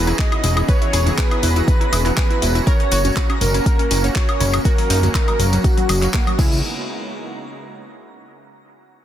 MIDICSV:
0, 0, Header, 1, 7, 480
1, 0, Start_track
1, 0, Tempo, 495868
1, 663, Time_signature, 4, 2, 24, 8
1, 8759, End_track
2, 0, Start_track
2, 0, Title_t, "Synth texture"
2, 0, Program_c, 0, 99
2, 0, Note_on_c, 0, 82, 90
2, 6434, Note_off_c, 0, 82, 0
2, 8759, End_track
3, 0, Start_track
3, 0, Title_t, "Analog synth lead"
3, 0, Program_c, 1, 81
3, 185, Note_on_c, 1, 75, 92
3, 619, Note_off_c, 1, 75, 0
3, 662, Note_on_c, 1, 73, 93
3, 1097, Note_off_c, 1, 73, 0
3, 1143, Note_on_c, 1, 71, 98
3, 1578, Note_off_c, 1, 71, 0
3, 1625, Note_on_c, 1, 71, 102
3, 2059, Note_off_c, 1, 71, 0
3, 2102, Note_on_c, 1, 71, 90
3, 2537, Note_off_c, 1, 71, 0
3, 2584, Note_on_c, 1, 73, 105
3, 3213, Note_off_c, 1, 73, 0
3, 3303, Note_on_c, 1, 70, 100
3, 3933, Note_off_c, 1, 70, 0
3, 4023, Note_on_c, 1, 73, 95
3, 4458, Note_off_c, 1, 73, 0
3, 4504, Note_on_c, 1, 70, 92
3, 4938, Note_off_c, 1, 70, 0
3, 4984, Note_on_c, 1, 70, 100
3, 5418, Note_off_c, 1, 70, 0
3, 5464, Note_on_c, 1, 66, 93
3, 5898, Note_off_c, 1, 66, 0
3, 5941, Note_on_c, 1, 66, 91
3, 6177, Note_off_c, 1, 66, 0
3, 6182, Note_on_c, 1, 64, 88
3, 6364, Note_off_c, 1, 64, 0
3, 8759, End_track
4, 0, Start_track
4, 0, Title_t, "Synth pluck"
4, 0, Program_c, 2, 84
4, 70, Note_on_c, 2, 64, 66
4, 144, Note_off_c, 2, 64, 0
4, 182, Note_on_c, 2, 68, 100
4, 266, Note_off_c, 2, 68, 0
4, 309, Note_on_c, 2, 64, 67
4, 384, Note_off_c, 2, 64, 0
4, 421, Note_on_c, 2, 64, 69
4, 505, Note_off_c, 2, 64, 0
4, 549, Note_on_c, 2, 64, 68
4, 624, Note_off_c, 2, 64, 0
4, 662, Note_on_c, 2, 71, 104
4, 745, Note_off_c, 2, 71, 0
4, 789, Note_on_c, 2, 64, 69
4, 864, Note_off_c, 2, 64, 0
4, 902, Note_on_c, 2, 68, 91
4, 986, Note_off_c, 2, 68, 0
4, 1029, Note_on_c, 2, 64, 64
4, 1104, Note_off_c, 2, 64, 0
4, 1143, Note_on_c, 2, 68, 94
4, 1226, Note_off_c, 2, 68, 0
4, 1271, Note_on_c, 2, 64, 66
4, 1345, Note_off_c, 2, 64, 0
4, 1384, Note_on_c, 2, 64, 67
4, 1467, Note_off_c, 2, 64, 0
4, 1511, Note_on_c, 2, 64, 65
4, 1585, Note_off_c, 2, 64, 0
4, 1751, Note_on_c, 2, 64, 70
4, 1824, Note_off_c, 2, 64, 0
4, 1864, Note_on_c, 2, 64, 70
4, 1946, Note_off_c, 2, 64, 0
4, 1991, Note_on_c, 2, 64, 64
4, 2065, Note_off_c, 2, 64, 0
4, 2104, Note_on_c, 2, 68, 98
4, 2186, Note_off_c, 2, 68, 0
4, 2230, Note_on_c, 2, 64, 69
4, 2304, Note_off_c, 2, 64, 0
4, 2344, Note_on_c, 2, 64, 68
4, 2427, Note_off_c, 2, 64, 0
4, 2471, Note_on_c, 2, 64, 66
4, 2545, Note_off_c, 2, 64, 0
4, 2584, Note_on_c, 2, 70, 105
4, 2667, Note_off_c, 2, 70, 0
4, 2711, Note_on_c, 2, 61, 65
4, 2785, Note_off_c, 2, 61, 0
4, 2824, Note_on_c, 2, 66, 88
4, 2907, Note_off_c, 2, 66, 0
4, 2951, Note_on_c, 2, 61, 67
4, 3025, Note_off_c, 2, 61, 0
4, 3064, Note_on_c, 2, 66, 93
4, 3147, Note_off_c, 2, 66, 0
4, 3190, Note_on_c, 2, 61, 68
4, 3264, Note_off_c, 2, 61, 0
4, 3304, Note_on_c, 2, 61, 66
4, 3387, Note_off_c, 2, 61, 0
4, 3431, Note_on_c, 2, 61, 64
4, 3505, Note_off_c, 2, 61, 0
4, 3671, Note_on_c, 2, 61, 71
4, 3745, Note_off_c, 2, 61, 0
4, 3784, Note_on_c, 2, 61, 72
4, 3867, Note_off_c, 2, 61, 0
4, 3911, Note_on_c, 2, 61, 65
4, 3985, Note_off_c, 2, 61, 0
4, 4024, Note_on_c, 2, 66, 98
4, 4107, Note_off_c, 2, 66, 0
4, 4150, Note_on_c, 2, 61, 67
4, 4224, Note_off_c, 2, 61, 0
4, 4264, Note_on_c, 2, 61, 69
4, 4347, Note_off_c, 2, 61, 0
4, 4390, Note_on_c, 2, 61, 64
4, 4464, Note_off_c, 2, 61, 0
4, 4503, Note_on_c, 2, 66, 102
4, 4586, Note_off_c, 2, 66, 0
4, 4631, Note_on_c, 2, 54, 69
4, 4705, Note_off_c, 2, 54, 0
4, 4744, Note_on_c, 2, 63, 93
4, 4827, Note_off_c, 2, 63, 0
4, 4871, Note_on_c, 2, 54, 67
4, 4945, Note_off_c, 2, 54, 0
4, 4983, Note_on_c, 2, 63, 96
4, 5066, Note_off_c, 2, 63, 0
4, 5110, Note_on_c, 2, 54, 65
4, 5184, Note_off_c, 2, 54, 0
4, 5223, Note_on_c, 2, 54, 64
4, 5306, Note_off_c, 2, 54, 0
4, 5351, Note_on_c, 2, 54, 69
4, 5424, Note_off_c, 2, 54, 0
4, 5590, Note_on_c, 2, 54, 68
4, 5664, Note_off_c, 2, 54, 0
4, 5703, Note_on_c, 2, 54, 69
4, 5786, Note_off_c, 2, 54, 0
4, 5830, Note_on_c, 2, 54, 67
4, 5904, Note_off_c, 2, 54, 0
4, 5943, Note_on_c, 2, 58, 98
4, 6026, Note_off_c, 2, 58, 0
4, 6069, Note_on_c, 2, 54, 68
4, 6144, Note_off_c, 2, 54, 0
4, 6182, Note_on_c, 2, 56, 98
4, 6364, Note_off_c, 2, 56, 0
4, 8759, End_track
5, 0, Start_track
5, 0, Title_t, "Supersaw synth"
5, 0, Program_c, 3, 81
5, 0, Note_on_c, 3, 52, 84
5, 0, Note_on_c, 3, 59, 72
5, 0, Note_on_c, 3, 61, 75
5, 0, Note_on_c, 3, 66, 76
5, 0, Note_on_c, 3, 68, 95
5, 2545, Note_off_c, 3, 52, 0
5, 2545, Note_off_c, 3, 59, 0
5, 2545, Note_off_c, 3, 61, 0
5, 2545, Note_off_c, 3, 68, 0
5, 2585, Note_on_c, 3, 58, 83
5, 2585, Note_on_c, 3, 61, 77
5, 6145, Note_off_c, 3, 66, 0
5, 6148, Note_off_c, 3, 58, 0
5, 6148, Note_off_c, 3, 61, 0
5, 6182, Note_on_c, 3, 56, 70
5, 6182, Note_on_c, 3, 59, 70
5, 6182, Note_on_c, 3, 63, 70
5, 6182, Note_on_c, 3, 64, 81
5, 6183, Note_on_c, 3, 49, 74
5, 6406, Note_off_c, 3, 49, 0
5, 6406, Note_off_c, 3, 56, 0
5, 6406, Note_off_c, 3, 59, 0
5, 6406, Note_off_c, 3, 63, 0
5, 6406, Note_off_c, 3, 64, 0
5, 8759, End_track
6, 0, Start_track
6, 0, Title_t, "Analog synth bass"
6, 0, Program_c, 4, 38
6, 0, Note_on_c, 4, 28, 94
6, 124, Note_off_c, 4, 28, 0
6, 423, Note_on_c, 4, 28, 106
6, 604, Note_off_c, 4, 28, 0
6, 904, Note_on_c, 4, 28, 102
6, 1084, Note_off_c, 4, 28, 0
6, 1385, Note_on_c, 4, 28, 100
6, 1565, Note_off_c, 4, 28, 0
6, 1864, Note_on_c, 4, 28, 93
6, 2044, Note_off_c, 4, 28, 0
6, 2344, Note_on_c, 4, 28, 109
6, 2524, Note_off_c, 4, 28, 0
6, 2825, Note_on_c, 4, 30, 103
6, 3005, Note_off_c, 4, 30, 0
6, 3303, Note_on_c, 4, 30, 103
6, 3484, Note_off_c, 4, 30, 0
6, 3783, Note_on_c, 4, 30, 96
6, 3964, Note_off_c, 4, 30, 0
6, 4262, Note_on_c, 4, 30, 107
6, 4443, Note_off_c, 4, 30, 0
6, 4742, Note_on_c, 4, 30, 106
6, 4923, Note_off_c, 4, 30, 0
6, 5222, Note_on_c, 4, 30, 103
6, 5403, Note_off_c, 4, 30, 0
6, 5702, Note_on_c, 4, 30, 97
6, 5883, Note_off_c, 4, 30, 0
6, 6183, Note_on_c, 4, 37, 105
6, 6406, Note_off_c, 4, 37, 0
6, 8759, End_track
7, 0, Start_track
7, 0, Title_t, "Drums"
7, 68, Note_on_c, 9, 54, 56
7, 70, Note_on_c, 9, 76, 73
7, 71, Note_on_c, 9, 42, 37
7, 165, Note_off_c, 9, 54, 0
7, 167, Note_off_c, 9, 76, 0
7, 168, Note_off_c, 9, 42, 0
7, 183, Note_on_c, 9, 36, 110
7, 183, Note_on_c, 9, 39, 116
7, 184, Note_on_c, 9, 42, 63
7, 279, Note_off_c, 9, 39, 0
7, 280, Note_off_c, 9, 36, 0
7, 281, Note_off_c, 9, 42, 0
7, 309, Note_on_c, 9, 76, 39
7, 311, Note_off_c, 9, 76, 0
7, 311, Note_on_c, 9, 42, 39
7, 311, Note_on_c, 9, 76, 88
7, 408, Note_off_c, 9, 42, 0
7, 408, Note_off_c, 9, 76, 0
7, 421, Note_on_c, 9, 54, 105
7, 423, Note_on_c, 9, 46, 112
7, 423, Note_on_c, 9, 63, 66
7, 518, Note_off_c, 9, 54, 0
7, 520, Note_off_c, 9, 46, 0
7, 520, Note_off_c, 9, 63, 0
7, 544, Note_on_c, 9, 76, 39
7, 550, Note_off_c, 9, 76, 0
7, 550, Note_on_c, 9, 42, 39
7, 550, Note_on_c, 9, 76, 84
7, 551, Note_on_c, 9, 54, 51
7, 647, Note_off_c, 9, 42, 0
7, 647, Note_off_c, 9, 76, 0
7, 648, Note_off_c, 9, 54, 0
7, 661, Note_on_c, 9, 54, 38
7, 664, Note_on_c, 9, 36, 121
7, 665, Note_on_c, 9, 42, 65
7, 758, Note_off_c, 9, 54, 0
7, 760, Note_off_c, 9, 36, 0
7, 761, Note_off_c, 9, 42, 0
7, 792, Note_on_c, 9, 42, 38
7, 889, Note_off_c, 9, 42, 0
7, 902, Note_on_c, 9, 76, 73
7, 904, Note_on_c, 9, 46, 102
7, 905, Note_on_c, 9, 54, 91
7, 999, Note_off_c, 9, 76, 0
7, 1001, Note_off_c, 9, 46, 0
7, 1002, Note_off_c, 9, 54, 0
7, 1027, Note_on_c, 9, 64, 85
7, 1032, Note_on_c, 9, 42, 41
7, 1034, Note_on_c, 9, 54, 49
7, 1124, Note_off_c, 9, 64, 0
7, 1129, Note_off_c, 9, 42, 0
7, 1131, Note_off_c, 9, 54, 0
7, 1144, Note_on_c, 9, 36, 106
7, 1144, Note_on_c, 9, 39, 112
7, 1146, Note_on_c, 9, 42, 70
7, 1146, Note_on_c, 9, 54, 38
7, 1148, Note_on_c, 9, 76, 35
7, 1240, Note_off_c, 9, 36, 0
7, 1241, Note_off_c, 9, 39, 0
7, 1243, Note_off_c, 9, 42, 0
7, 1243, Note_off_c, 9, 54, 0
7, 1245, Note_off_c, 9, 76, 0
7, 1272, Note_on_c, 9, 42, 39
7, 1272, Note_on_c, 9, 76, 70
7, 1369, Note_off_c, 9, 42, 0
7, 1369, Note_off_c, 9, 76, 0
7, 1380, Note_on_c, 9, 63, 67
7, 1382, Note_on_c, 9, 54, 85
7, 1385, Note_on_c, 9, 46, 106
7, 1385, Note_on_c, 9, 76, 36
7, 1477, Note_off_c, 9, 63, 0
7, 1479, Note_off_c, 9, 54, 0
7, 1482, Note_off_c, 9, 46, 0
7, 1482, Note_off_c, 9, 76, 0
7, 1512, Note_on_c, 9, 42, 40
7, 1512, Note_on_c, 9, 54, 48
7, 1609, Note_off_c, 9, 42, 0
7, 1609, Note_off_c, 9, 54, 0
7, 1624, Note_on_c, 9, 36, 121
7, 1626, Note_on_c, 9, 42, 67
7, 1626, Note_on_c, 9, 54, 39
7, 1721, Note_off_c, 9, 36, 0
7, 1723, Note_off_c, 9, 42, 0
7, 1723, Note_off_c, 9, 54, 0
7, 1750, Note_on_c, 9, 76, 76
7, 1753, Note_on_c, 9, 42, 41
7, 1846, Note_off_c, 9, 76, 0
7, 1850, Note_off_c, 9, 42, 0
7, 1865, Note_on_c, 9, 46, 99
7, 1865, Note_on_c, 9, 54, 91
7, 1865, Note_on_c, 9, 76, 66
7, 1962, Note_off_c, 9, 46, 0
7, 1962, Note_off_c, 9, 54, 0
7, 1962, Note_off_c, 9, 76, 0
7, 1988, Note_on_c, 9, 76, 41
7, 1990, Note_on_c, 9, 39, 33
7, 1990, Note_on_c, 9, 54, 50
7, 1991, Note_on_c, 9, 42, 40
7, 2085, Note_off_c, 9, 76, 0
7, 2087, Note_off_c, 9, 39, 0
7, 2087, Note_off_c, 9, 54, 0
7, 2088, Note_off_c, 9, 42, 0
7, 2104, Note_on_c, 9, 36, 106
7, 2104, Note_on_c, 9, 39, 112
7, 2105, Note_on_c, 9, 42, 64
7, 2108, Note_on_c, 9, 54, 38
7, 2201, Note_off_c, 9, 36, 0
7, 2201, Note_off_c, 9, 39, 0
7, 2202, Note_off_c, 9, 42, 0
7, 2205, Note_off_c, 9, 54, 0
7, 2224, Note_on_c, 9, 76, 41
7, 2232, Note_on_c, 9, 42, 39
7, 2321, Note_off_c, 9, 76, 0
7, 2329, Note_off_c, 9, 42, 0
7, 2340, Note_on_c, 9, 63, 74
7, 2345, Note_on_c, 9, 46, 107
7, 2349, Note_on_c, 9, 54, 84
7, 2437, Note_off_c, 9, 63, 0
7, 2442, Note_off_c, 9, 46, 0
7, 2446, Note_off_c, 9, 54, 0
7, 2468, Note_on_c, 9, 54, 55
7, 2472, Note_on_c, 9, 42, 40
7, 2565, Note_off_c, 9, 54, 0
7, 2569, Note_off_c, 9, 42, 0
7, 2579, Note_on_c, 9, 76, 83
7, 2581, Note_on_c, 9, 54, 40
7, 2583, Note_on_c, 9, 36, 119
7, 2585, Note_on_c, 9, 42, 70
7, 2676, Note_off_c, 9, 76, 0
7, 2678, Note_off_c, 9, 54, 0
7, 2680, Note_off_c, 9, 36, 0
7, 2682, Note_off_c, 9, 42, 0
7, 2710, Note_on_c, 9, 42, 39
7, 2807, Note_off_c, 9, 42, 0
7, 2821, Note_on_c, 9, 54, 89
7, 2823, Note_on_c, 9, 76, 42
7, 2824, Note_on_c, 9, 46, 101
7, 2917, Note_off_c, 9, 54, 0
7, 2920, Note_off_c, 9, 76, 0
7, 2921, Note_off_c, 9, 46, 0
7, 2946, Note_on_c, 9, 54, 51
7, 2951, Note_on_c, 9, 42, 41
7, 2955, Note_on_c, 9, 64, 78
7, 3042, Note_off_c, 9, 54, 0
7, 3048, Note_off_c, 9, 42, 0
7, 3052, Note_off_c, 9, 64, 0
7, 3063, Note_on_c, 9, 36, 102
7, 3063, Note_on_c, 9, 39, 113
7, 3065, Note_on_c, 9, 42, 72
7, 3065, Note_on_c, 9, 76, 42
7, 3160, Note_off_c, 9, 36, 0
7, 3160, Note_off_c, 9, 39, 0
7, 3161, Note_off_c, 9, 42, 0
7, 3162, Note_off_c, 9, 76, 0
7, 3192, Note_on_c, 9, 42, 42
7, 3192, Note_on_c, 9, 76, 72
7, 3289, Note_off_c, 9, 42, 0
7, 3289, Note_off_c, 9, 76, 0
7, 3300, Note_on_c, 9, 63, 68
7, 3301, Note_on_c, 9, 54, 93
7, 3304, Note_on_c, 9, 46, 101
7, 3396, Note_off_c, 9, 63, 0
7, 3398, Note_off_c, 9, 54, 0
7, 3400, Note_off_c, 9, 46, 0
7, 3428, Note_on_c, 9, 76, 78
7, 3431, Note_on_c, 9, 42, 40
7, 3431, Note_on_c, 9, 54, 53
7, 3525, Note_off_c, 9, 76, 0
7, 3527, Note_off_c, 9, 42, 0
7, 3528, Note_off_c, 9, 54, 0
7, 3543, Note_on_c, 9, 36, 112
7, 3544, Note_on_c, 9, 54, 40
7, 3545, Note_on_c, 9, 42, 67
7, 3640, Note_off_c, 9, 36, 0
7, 3641, Note_off_c, 9, 42, 0
7, 3641, Note_off_c, 9, 54, 0
7, 3672, Note_on_c, 9, 42, 40
7, 3672, Note_on_c, 9, 76, 38
7, 3769, Note_off_c, 9, 42, 0
7, 3769, Note_off_c, 9, 76, 0
7, 3782, Note_on_c, 9, 54, 87
7, 3784, Note_on_c, 9, 46, 99
7, 3879, Note_off_c, 9, 54, 0
7, 3881, Note_off_c, 9, 46, 0
7, 3906, Note_on_c, 9, 76, 37
7, 3911, Note_on_c, 9, 42, 40
7, 3914, Note_on_c, 9, 54, 53
7, 4003, Note_off_c, 9, 76, 0
7, 4008, Note_off_c, 9, 42, 0
7, 4011, Note_off_c, 9, 54, 0
7, 4022, Note_on_c, 9, 39, 120
7, 4023, Note_on_c, 9, 36, 98
7, 4024, Note_on_c, 9, 42, 70
7, 4119, Note_off_c, 9, 39, 0
7, 4120, Note_off_c, 9, 36, 0
7, 4120, Note_off_c, 9, 42, 0
7, 4151, Note_on_c, 9, 42, 42
7, 4151, Note_on_c, 9, 76, 85
7, 4247, Note_off_c, 9, 42, 0
7, 4247, Note_off_c, 9, 76, 0
7, 4264, Note_on_c, 9, 46, 108
7, 4264, Note_on_c, 9, 54, 91
7, 4266, Note_on_c, 9, 76, 76
7, 4267, Note_on_c, 9, 63, 73
7, 4361, Note_off_c, 9, 46, 0
7, 4361, Note_off_c, 9, 54, 0
7, 4363, Note_off_c, 9, 76, 0
7, 4364, Note_off_c, 9, 63, 0
7, 4388, Note_on_c, 9, 54, 47
7, 4390, Note_on_c, 9, 42, 41
7, 4390, Note_on_c, 9, 76, 81
7, 4484, Note_off_c, 9, 54, 0
7, 4487, Note_off_c, 9, 42, 0
7, 4487, Note_off_c, 9, 76, 0
7, 4497, Note_on_c, 9, 54, 39
7, 4502, Note_on_c, 9, 36, 121
7, 4504, Note_on_c, 9, 42, 70
7, 4505, Note_on_c, 9, 76, 39
7, 4593, Note_off_c, 9, 54, 0
7, 4599, Note_off_c, 9, 36, 0
7, 4600, Note_off_c, 9, 42, 0
7, 4602, Note_off_c, 9, 76, 0
7, 4631, Note_on_c, 9, 46, 60
7, 4728, Note_off_c, 9, 46, 0
7, 4744, Note_on_c, 9, 46, 100
7, 4744, Note_on_c, 9, 76, 41
7, 4747, Note_on_c, 9, 54, 90
7, 4841, Note_off_c, 9, 46, 0
7, 4841, Note_off_c, 9, 76, 0
7, 4843, Note_off_c, 9, 54, 0
7, 4864, Note_on_c, 9, 64, 88
7, 4871, Note_on_c, 9, 42, 43
7, 4875, Note_on_c, 9, 54, 46
7, 4961, Note_off_c, 9, 64, 0
7, 4968, Note_off_c, 9, 42, 0
7, 4972, Note_off_c, 9, 54, 0
7, 4982, Note_on_c, 9, 36, 103
7, 4982, Note_on_c, 9, 54, 40
7, 4983, Note_on_c, 9, 39, 121
7, 4984, Note_on_c, 9, 42, 72
7, 5079, Note_off_c, 9, 36, 0
7, 5079, Note_off_c, 9, 54, 0
7, 5080, Note_off_c, 9, 39, 0
7, 5081, Note_off_c, 9, 42, 0
7, 5111, Note_on_c, 9, 42, 42
7, 5111, Note_on_c, 9, 76, 65
7, 5112, Note_off_c, 9, 76, 0
7, 5112, Note_on_c, 9, 76, 76
7, 5208, Note_off_c, 9, 42, 0
7, 5209, Note_off_c, 9, 76, 0
7, 5218, Note_on_c, 9, 63, 75
7, 5223, Note_on_c, 9, 46, 106
7, 5230, Note_on_c, 9, 54, 89
7, 5314, Note_off_c, 9, 63, 0
7, 5320, Note_off_c, 9, 46, 0
7, 5326, Note_off_c, 9, 54, 0
7, 5348, Note_on_c, 9, 76, 40
7, 5349, Note_on_c, 9, 54, 51
7, 5351, Note_on_c, 9, 42, 42
7, 5445, Note_off_c, 9, 76, 0
7, 5446, Note_off_c, 9, 54, 0
7, 5448, Note_off_c, 9, 42, 0
7, 5462, Note_on_c, 9, 36, 123
7, 5462, Note_on_c, 9, 54, 38
7, 5463, Note_on_c, 9, 42, 71
7, 5559, Note_off_c, 9, 36, 0
7, 5559, Note_off_c, 9, 54, 0
7, 5560, Note_off_c, 9, 42, 0
7, 5586, Note_on_c, 9, 76, 43
7, 5590, Note_on_c, 9, 42, 43
7, 5683, Note_off_c, 9, 76, 0
7, 5687, Note_off_c, 9, 42, 0
7, 5702, Note_on_c, 9, 54, 87
7, 5703, Note_on_c, 9, 46, 98
7, 5703, Note_on_c, 9, 76, 64
7, 5799, Note_off_c, 9, 54, 0
7, 5800, Note_off_c, 9, 46, 0
7, 5800, Note_off_c, 9, 76, 0
7, 5829, Note_on_c, 9, 39, 37
7, 5830, Note_on_c, 9, 42, 39
7, 5835, Note_on_c, 9, 54, 51
7, 5926, Note_off_c, 9, 39, 0
7, 5927, Note_off_c, 9, 42, 0
7, 5932, Note_off_c, 9, 54, 0
7, 5941, Note_on_c, 9, 39, 126
7, 5942, Note_on_c, 9, 36, 104
7, 5943, Note_on_c, 9, 42, 67
7, 5945, Note_on_c, 9, 76, 82
7, 6038, Note_off_c, 9, 39, 0
7, 6039, Note_off_c, 9, 36, 0
7, 6040, Note_off_c, 9, 42, 0
7, 6042, Note_off_c, 9, 76, 0
7, 6071, Note_on_c, 9, 42, 44
7, 6071, Note_on_c, 9, 76, 83
7, 6168, Note_off_c, 9, 42, 0
7, 6168, Note_off_c, 9, 76, 0
7, 6177, Note_on_c, 9, 76, 44
7, 6182, Note_on_c, 9, 36, 118
7, 6182, Note_on_c, 9, 54, 94
7, 6184, Note_on_c, 9, 49, 87
7, 6187, Note_on_c, 9, 63, 70
7, 6274, Note_off_c, 9, 76, 0
7, 6279, Note_off_c, 9, 36, 0
7, 6279, Note_off_c, 9, 54, 0
7, 6281, Note_off_c, 9, 49, 0
7, 6283, Note_off_c, 9, 63, 0
7, 6313, Note_on_c, 9, 54, 53
7, 6409, Note_off_c, 9, 54, 0
7, 8759, End_track
0, 0, End_of_file